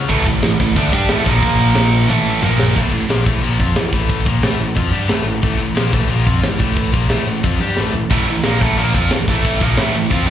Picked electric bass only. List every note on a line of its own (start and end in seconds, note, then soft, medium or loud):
0.09 0.25 A1 loud
0.26 0.42 A1 medium
0.43 0.58 A1 medium
0.59 0.75 A1 medium
0.76 0.92 D2 medium
0.93 1.08 G2 loud
1.10 1.25 A1 medium
1.26 1.42 A#1 loud
1.42 2.05 A#1 loud
2.10 2.40 A1 medium
2.42 2.74 A#1 loud
2.76 2.92 A1 loud
2.92 3.08 A1 medium
3.09 3.25 A#1 medium
3.26 3.42 A1 medium
3.42 3.58 A#1 medium
3.59 3.74 F2 medium
3.74 3.91 A1 medium
3.92 4.24 A1 medium
4.26 4.41 A#1 loud
4.42 4.58 A1 medium
4.59 4.75 A1 medium
4.76 4.90 F2 loud
4.91 5.07 G2 loud
5.08 5.24 A1 loud
5.24 5.41 A1 medium
5.43 5.58 A1 medium
5.59 5.74 A1 medium
5.74 5.91 A#1 medium
5.93 6.07 A1 medium
6.08 6.25 A#1 loud
6.26 6.42 F2 medium
6.42 6.58 A1 medium
6.59 6.91 A1 loud
6.94 7.08 A#1 medium
7.09 7.25 A1 medium
7.26 7.42 A1 medium
7.44 7.59 F2 medium
7.60 7.76 G2 medium
7.78 7.93 A1 medium
7.95 8.10 A1 medium
8.11 8.26 A1 medium
8.30 8.44 A1 medium
8.45 8.60 A#1 medium
8.61 8.77 A1 medium
8.79 8.93 A#1 medium
8.94 9.10 F2 loud
9.10 9.26 A1 medium
9.28 9.59 A1 loud
9.61 9.77 A#1 loud
9.78 9.93 A1 medium
9.97 10.10 A1 medium
10.10 10.26 F2 medium